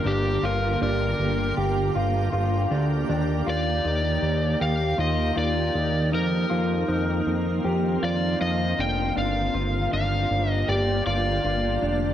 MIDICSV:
0, 0, Header, 1, 5, 480
1, 0, Start_track
1, 0, Key_signature, -2, "minor"
1, 0, Tempo, 759494
1, 31, Time_signature, 4, 2, 24, 8
1, 7671, End_track
2, 0, Start_track
2, 0, Title_t, "Electric slide guitar"
2, 0, Program_c, 0, 29
2, 46, Note_on_c, 0, 67, 76
2, 285, Note_on_c, 0, 70, 72
2, 286, Note_off_c, 0, 67, 0
2, 516, Note_off_c, 0, 70, 0
2, 523, Note_on_c, 0, 70, 75
2, 972, Note_off_c, 0, 70, 0
2, 2208, Note_on_c, 0, 74, 84
2, 2918, Note_off_c, 0, 74, 0
2, 2921, Note_on_c, 0, 77, 96
2, 3139, Note_off_c, 0, 77, 0
2, 3162, Note_on_c, 0, 75, 71
2, 3400, Note_off_c, 0, 75, 0
2, 3402, Note_on_c, 0, 74, 79
2, 3851, Note_off_c, 0, 74, 0
2, 3884, Note_on_c, 0, 70, 73
2, 5084, Note_on_c, 0, 74, 75
2, 5113, Note_off_c, 0, 70, 0
2, 5316, Note_off_c, 0, 74, 0
2, 5318, Note_on_c, 0, 75, 87
2, 5562, Note_off_c, 0, 75, 0
2, 5563, Note_on_c, 0, 79, 91
2, 5799, Note_off_c, 0, 79, 0
2, 5801, Note_on_c, 0, 77, 85
2, 6272, Note_off_c, 0, 77, 0
2, 6279, Note_on_c, 0, 77, 89
2, 6640, Note_off_c, 0, 77, 0
2, 6640, Note_on_c, 0, 75, 89
2, 6756, Note_on_c, 0, 74, 94
2, 6769, Note_off_c, 0, 75, 0
2, 6986, Note_off_c, 0, 74, 0
2, 6993, Note_on_c, 0, 74, 76
2, 7671, Note_off_c, 0, 74, 0
2, 7671, End_track
3, 0, Start_track
3, 0, Title_t, "Clean electric guitar"
3, 0, Program_c, 1, 27
3, 34, Note_on_c, 1, 62, 85
3, 272, Note_off_c, 1, 62, 0
3, 273, Note_on_c, 1, 65, 74
3, 512, Note_off_c, 1, 65, 0
3, 514, Note_on_c, 1, 62, 64
3, 993, Note_off_c, 1, 62, 0
3, 993, Note_on_c, 1, 67, 78
3, 1232, Note_off_c, 1, 67, 0
3, 1234, Note_on_c, 1, 65, 69
3, 1461, Note_off_c, 1, 65, 0
3, 1469, Note_on_c, 1, 65, 73
3, 1710, Note_off_c, 1, 65, 0
3, 1711, Note_on_c, 1, 62, 67
3, 1945, Note_off_c, 1, 62, 0
3, 1952, Note_on_c, 1, 62, 81
3, 2189, Note_on_c, 1, 65, 68
3, 2192, Note_off_c, 1, 62, 0
3, 2430, Note_off_c, 1, 65, 0
3, 2430, Note_on_c, 1, 63, 73
3, 2908, Note_on_c, 1, 67, 69
3, 2910, Note_off_c, 1, 63, 0
3, 3144, Note_off_c, 1, 67, 0
3, 3147, Note_on_c, 1, 65, 76
3, 3378, Note_off_c, 1, 65, 0
3, 3385, Note_on_c, 1, 65, 72
3, 3628, Note_off_c, 1, 65, 0
3, 3629, Note_on_c, 1, 63, 59
3, 3859, Note_off_c, 1, 63, 0
3, 3867, Note_on_c, 1, 63, 77
3, 4106, Note_on_c, 1, 65, 75
3, 4109, Note_off_c, 1, 63, 0
3, 4349, Note_off_c, 1, 65, 0
3, 4349, Note_on_c, 1, 63, 63
3, 4830, Note_off_c, 1, 63, 0
3, 4831, Note_on_c, 1, 67, 75
3, 5068, Note_off_c, 1, 67, 0
3, 5070, Note_on_c, 1, 65, 71
3, 5304, Note_off_c, 1, 65, 0
3, 5312, Note_on_c, 1, 65, 68
3, 5550, Note_on_c, 1, 62, 69
3, 5551, Note_off_c, 1, 65, 0
3, 5783, Note_off_c, 1, 62, 0
3, 5791, Note_on_c, 1, 62, 82
3, 6031, Note_off_c, 1, 62, 0
3, 6031, Note_on_c, 1, 65, 75
3, 6271, Note_off_c, 1, 65, 0
3, 6272, Note_on_c, 1, 62, 64
3, 6752, Note_off_c, 1, 62, 0
3, 6753, Note_on_c, 1, 67, 73
3, 6989, Note_off_c, 1, 67, 0
3, 6992, Note_on_c, 1, 65, 74
3, 7225, Note_off_c, 1, 65, 0
3, 7233, Note_on_c, 1, 65, 71
3, 7471, Note_on_c, 1, 62, 64
3, 7472, Note_off_c, 1, 65, 0
3, 7671, Note_off_c, 1, 62, 0
3, 7671, End_track
4, 0, Start_track
4, 0, Title_t, "Ambient pad"
4, 0, Program_c, 2, 92
4, 0, Note_on_c, 2, 50, 70
4, 0, Note_on_c, 2, 58, 72
4, 0, Note_on_c, 2, 65, 63
4, 0, Note_on_c, 2, 67, 89
4, 1924, Note_off_c, 2, 50, 0
4, 1924, Note_off_c, 2, 65, 0
4, 1952, Note_on_c, 2, 51, 71
4, 3844, Note_off_c, 2, 67, 0
4, 3868, Note_on_c, 2, 65, 83
4, 3869, Note_on_c, 2, 60, 76
4, 5766, Note_off_c, 2, 51, 0
4, 5771, Note_off_c, 2, 60, 0
4, 5789, Note_on_c, 2, 50, 71
4, 5792, Note_on_c, 2, 67, 83
4, 7671, Note_off_c, 2, 50, 0
4, 7671, Note_off_c, 2, 58, 0
4, 7671, Note_off_c, 2, 65, 0
4, 7671, Note_off_c, 2, 67, 0
4, 7671, End_track
5, 0, Start_track
5, 0, Title_t, "Analog synth bass"
5, 0, Program_c, 3, 38
5, 30, Note_on_c, 3, 31, 98
5, 242, Note_off_c, 3, 31, 0
5, 272, Note_on_c, 3, 31, 84
5, 483, Note_off_c, 3, 31, 0
5, 512, Note_on_c, 3, 31, 100
5, 723, Note_off_c, 3, 31, 0
5, 755, Note_on_c, 3, 31, 84
5, 964, Note_off_c, 3, 31, 0
5, 995, Note_on_c, 3, 31, 90
5, 1204, Note_off_c, 3, 31, 0
5, 1236, Note_on_c, 3, 31, 93
5, 1445, Note_off_c, 3, 31, 0
5, 1473, Note_on_c, 3, 31, 102
5, 1684, Note_off_c, 3, 31, 0
5, 1714, Note_on_c, 3, 38, 101
5, 1924, Note_off_c, 3, 38, 0
5, 1952, Note_on_c, 3, 39, 109
5, 2163, Note_off_c, 3, 39, 0
5, 2194, Note_on_c, 3, 39, 91
5, 2404, Note_off_c, 3, 39, 0
5, 2434, Note_on_c, 3, 39, 86
5, 2644, Note_off_c, 3, 39, 0
5, 2669, Note_on_c, 3, 39, 91
5, 2881, Note_off_c, 3, 39, 0
5, 2911, Note_on_c, 3, 39, 82
5, 3122, Note_off_c, 3, 39, 0
5, 3148, Note_on_c, 3, 39, 96
5, 3361, Note_off_c, 3, 39, 0
5, 3393, Note_on_c, 3, 39, 103
5, 3603, Note_off_c, 3, 39, 0
5, 3634, Note_on_c, 3, 39, 93
5, 3872, Note_on_c, 3, 41, 104
5, 3882, Note_off_c, 3, 39, 0
5, 4083, Note_off_c, 3, 41, 0
5, 4113, Note_on_c, 3, 41, 82
5, 4323, Note_off_c, 3, 41, 0
5, 4350, Note_on_c, 3, 41, 91
5, 4562, Note_off_c, 3, 41, 0
5, 4592, Note_on_c, 3, 41, 84
5, 4803, Note_off_c, 3, 41, 0
5, 4832, Note_on_c, 3, 41, 89
5, 5043, Note_off_c, 3, 41, 0
5, 5072, Note_on_c, 3, 41, 77
5, 5283, Note_off_c, 3, 41, 0
5, 5315, Note_on_c, 3, 41, 110
5, 5524, Note_off_c, 3, 41, 0
5, 5553, Note_on_c, 3, 29, 74
5, 5763, Note_off_c, 3, 29, 0
5, 5793, Note_on_c, 3, 31, 92
5, 6003, Note_off_c, 3, 31, 0
5, 6032, Note_on_c, 3, 31, 93
5, 6243, Note_off_c, 3, 31, 0
5, 6275, Note_on_c, 3, 31, 86
5, 6484, Note_off_c, 3, 31, 0
5, 6515, Note_on_c, 3, 31, 89
5, 6724, Note_off_c, 3, 31, 0
5, 6752, Note_on_c, 3, 31, 93
5, 6963, Note_off_c, 3, 31, 0
5, 6992, Note_on_c, 3, 31, 96
5, 7203, Note_off_c, 3, 31, 0
5, 7233, Note_on_c, 3, 31, 94
5, 7444, Note_off_c, 3, 31, 0
5, 7473, Note_on_c, 3, 29, 80
5, 7671, Note_off_c, 3, 29, 0
5, 7671, End_track
0, 0, End_of_file